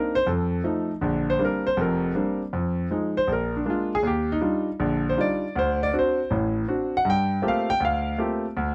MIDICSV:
0, 0, Header, 1, 2, 480
1, 0, Start_track
1, 0, Key_signature, -2, "minor"
1, 0, Tempo, 376884
1, 1302, Time_signature, 4, 2, 24, 8
1, 11141, End_track
2, 0, Start_track
2, 0, Title_t, "Grand piano"
2, 0, Program_c, 0, 0
2, 0, Note_on_c, 0, 58, 60
2, 0, Note_on_c, 0, 60, 51
2, 0, Note_on_c, 0, 62, 51
2, 0, Note_on_c, 0, 63, 64
2, 0, Note_on_c, 0, 70, 74
2, 187, Note_off_c, 0, 58, 0
2, 187, Note_off_c, 0, 60, 0
2, 189, Note_off_c, 0, 70, 0
2, 191, Note_off_c, 0, 62, 0
2, 193, Note_off_c, 0, 63, 0
2, 195, Note_on_c, 0, 72, 103
2, 339, Note_on_c, 0, 41, 79
2, 345, Note_off_c, 0, 72, 0
2, 361, Note_on_c, 0, 69, 56
2, 756, Note_off_c, 0, 41, 0
2, 814, Note_on_c, 0, 53, 56
2, 817, Note_on_c, 0, 57, 50
2, 822, Note_on_c, 0, 63, 65
2, 1097, Note_off_c, 0, 69, 0
2, 1151, Note_off_c, 0, 53, 0
2, 1152, Note_off_c, 0, 57, 0
2, 1155, Note_off_c, 0, 63, 0
2, 1290, Note_on_c, 0, 50, 74
2, 1298, Note_on_c, 0, 34, 78
2, 1653, Note_on_c, 0, 72, 95
2, 1711, Note_off_c, 0, 50, 0
2, 1716, Note_off_c, 0, 34, 0
2, 1766, Note_on_c, 0, 55, 60
2, 1774, Note_on_c, 0, 58, 58
2, 1774, Note_on_c, 0, 60, 50
2, 1778, Note_on_c, 0, 62, 64
2, 1794, Note_off_c, 0, 72, 0
2, 1843, Note_on_c, 0, 70, 80
2, 2107, Note_off_c, 0, 55, 0
2, 2111, Note_off_c, 0, 58, 0
2, 2111, Note_off_c, 0, 60, 0
2, 2113, Note_off_c, 0, 62, 0
2, 2120, Note_off_c, 0, 70, 0
2, 2121, Note_on_c, 0, 72, 93
2, 2255, Note_on_c, 0, 29, 75
2, 2256, Note_on_c, 0, 41, 78
2, 2268, Note_off_c, 0, 72, 0
2, 2309, Note_on_c, 0, 70, 72
2, 2674, Note_off_c, 0, 29, 0
2, 2675, Note_off_c, 0, 41, 0
2, 2736, Note_on_c, 0, 55, 57
2, 2738, Note_on_c, 0, 58, 50
2, 2738, Note_on_c, 0, 60, 51
2, 2742, Note_on_c, 0, 62, 64
2, 3031, Note_off_c, 0, 70, 0
2, 3072, Note_off_c, 0, 55, 0
2, 3073, Note_off_c, 0, 58, 0
2, 3073, Note_off_c, 0, 60, 0
2, 3075, Note_off_c, 0, 62, 0
2, 3223, Note_on_c, 0, 41, 72
2, 3638, Note_off_c, 0, 41, 0
2, 3700, Note_on_c, 0, 53, 55
2, 3707, Note_on_c, 0, 56, 52
2, 3709, Note_on_c, 0, 63, 63
2, 4034, Note_off_c, 0, 53, 0
2, 4038, Note_off_c, 0, 56, 0
2, 4039, Note_off_c, 0, 63, 0
2, 4041, Note_on_c, 0, 72, 96
2, 4170, Note_on_c, 0, 34, 71
2, 4189, Note_off_c, 0, 72, 0
2, 4236, Note_on_c, 0, 70, 77
2, 4517, Note_off_c, 0, 70, 0
2, 4539, Note_on_c, 0, 62, 59
2, 4592, Note_off_c, 0, 34, 0
2, 4643, Note_off_c, 0, 62, 0
2, 4655, Note_on_c, 0, 58, 52
2, 4661, Note_on_c, 0, 56, 57
2, 4662, Note_on_c, 0, 62, 64
2, 4713, Note_on_c, 0, 65, 69
2, 4992, Note_off_c, 0, 58, 0
2, 4995, Note_off_c, 0, 56, 0
2, 4995, Note_off_c, 0, 62, 0
2, 4996, Note_off_c, 0, 65, 0
2, 5029, Note_on_c, 0, 68, 101
2, 5128, Note_on_c, 0, 39, 74
2, 5163, Note_off_c, 0, 68, 0
2, 5183, Note_on_c, 0, 67, 78
2, 5471, Note_off_c, 0, 67, 0
2, 5504, Note_on_c, 0, 63, 88
2, 5551, Note_off_c, 0, 39, 0
2, 5589, Note_off_c, 0, 63, 0
2, 5617, Note_on_c, 0, 55, 58
2, 5620, Note_on_c, 0, 62, 51
2, 5625, Note_on_c, 0, 65, 61
2, 5627, Note_on_c, 0, 63, 57
2, 5953, Note_off_c, 0, 55, 0
2, 5955, Note_off_c, 0, 62, 0
2, 5957, Note_off_c, 0, 65, 0
2, 5958, Note_off_c, 0, 63, 0
2, 6108, Note_on_c, 0, 50, 76
2, 6109, Note_on_c, 0, 34, 80
2, 6488, Note_on_c, 0, 72, 83
2, 6522, Note_off_c, 0, 34, 0
2, 6522, Note_off_c, 0, 50, 0
2, 6586, Note_on_c, 0, 55, 55
2, 6593, Note_on_c, 0, 62, 49
2, 6599, Note_on_c, 0, 65, 66
2, 6601, Note_on_c, 0, 63, 51
2, 6613, Note_off_c, 0, 72, 0
2, 6631, Note_on_c, 0, 74, 85
2, 6918, Note_off_c, 0, 55, 0
2, 6921, Note_off_c, 0, 62, 0
2, 6924, Note_off_c, 0, 65, 0
2, 6925, Note_off_c, 0, 63, 0
2, 7055, Note_off_c, 0, 74, 0
2, 7076, Note_on_c, 0, 38, 79
2, 7115, Note_on_c, 0, 72, 88
2, 7397, Note_off_c, 0, 72, 0
2, 7426, Note_on_c, 0, 74, 91
2, 7486, Note_off_c, 0, 38, 0
2, 7553, Note_on_c, 0, 60, 63
2, 7554, Note_on_c, 0, 62, 54
2, 7560, Note_on_c, 0, 66, 69
2, 7562, Note_off_c, 0, 74, 0
2, 7624, Note_on_c, 0, 72, 83
2, 7881, Note_off_c, 0, 60, 0
2, 7882, Note_off_c, 0, 62, 0
2, 7885, Note_off_c, 0, 66, 0
2, 8029, Note_on_c, 0, 45, 74
2, 8033, Note_off_c, 0, 72, 0
2, 8036, Note_on_c, 0, 33, 73
2, 8442, Note_off_c, 0, 45, 0
2, 8446, Note_off_c, 0, 33, 0
2, 8506, Note_on_c, 0, 60, 57
2, 8510, Note_on_c, 0, 62, 53
2, 8513, Note_on_c, 0, 66, 64
2, 8838, Note_off_c, 0, 60, 0
2, 8840, Note_off_c, 0, 62, 0
2, 8841, Note_off_c, 0, 66, 0
2, 8876, Note_on_c, 0, 78, 95
2, 8979, Note_on_c, 0, 43, 81
2, 9007, Note_off_c, 0, 78, 0
2, 9040, Note_on_c, 0, 79, 104
2, 9397, Note_off_c, 0, 43, 0
2, 9452, Note_on_c, 0, 58, 57
2, 9454, Note_on_c, 0, 57, 62
2, 9455, Note_on_c, 0, 60, 55
2, 9458, Note_on_c, 0, 65, 55
2, 9460, Note_off_c, 0, 79, 0
2, 9466, Note_on_c, 0, 67, 66
2, 9528, Note_on_c, 0, 77, 86
2, 9791, Note_off_c, 0, 57, 0
2, 9791, Note_off_c, 0, 58, 0
2, 9792, Note_off_c, 0, 60, 0
2, 9793, Note_off_c, 0, 65, 0
2, 9798, Note_off_c, 0, 67, 0
2, 9804, Note_off_c, 0, 77, 0
2, 9806, Note_on_c, 0, 79, 108
2, 9938, Note_on_c, 0, 38, 77
2, 9952, Note_off_c, 0, 79, 0
2, 9995, Note_on_c, 0, 77, 88
2, 10356, Note_off_c, 0, 38, 0
2, 10417, Note_off_c, 0, 77, 0
2, 10422, Note_on_c, 0, 57, 58
2, 10429, Note_on_c, 0, 58, 53
2, 10429, Note_on_c, 0, 60, 53
2, 10436, Note_on_c, 0, 65, 56
2, 10437, Note_on_c, 0, 67, 61
2, 10755, Note_off_c, 0, 57, 0
2, 10758, Note_off_c, 0, 58, 0
2, 10758, Note_off_c, 0, 60, 0
2, 10762, Note_off_c, 0, 65, 0
2, 10763, Note_off_c, 0, 67, 0
2, 10910, Note_on_c, 0, 38, 80
2, 11141, Note_off_c, 0, 38, 0
2, 11141, End_track
0, 0, End_of_file